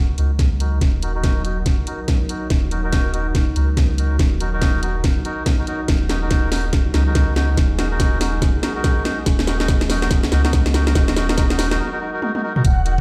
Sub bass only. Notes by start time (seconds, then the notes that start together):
0.18 C#2
0.81 D#1
2.50 D#1
3.56 C#2
4.19 D#1
5.88 D#1
6.94 C#2
7.57 D#1
9.26 D#1
10.32 C#2
10.95 D#1
12.64 D#1